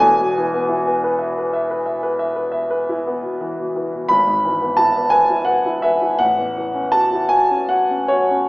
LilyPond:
\new Staff \with { instrumentName = "Grand piano" } { \time 12/8 \key fis \dorian \tempo 4. = 58 << { gis''1~ gis''8 r4. | b''4 a''8 gis''8 fis''8 e''8 fis''4 a''8 gis''8 fis''8 cis''8 | } \\ { <e,, e,>16 b,16 e16 b16 e'16 b16 b'16 e''16 b'16 e''16 b'16 e''16 b'16 e''16 b'16 e''16 b'16 e'16 b16 b,16 e16 b,16 e16 b,16 | gis,,16 gis,16 e16 b16 e'16 b16 b'16 e'16 b'16 e'16 b'16 e'16 a,,16 e,16 e16 cis'16 fis'16 e'16 fis'16 cis'16 fis'16 cis'16 fis'16 cis'16 | } >> }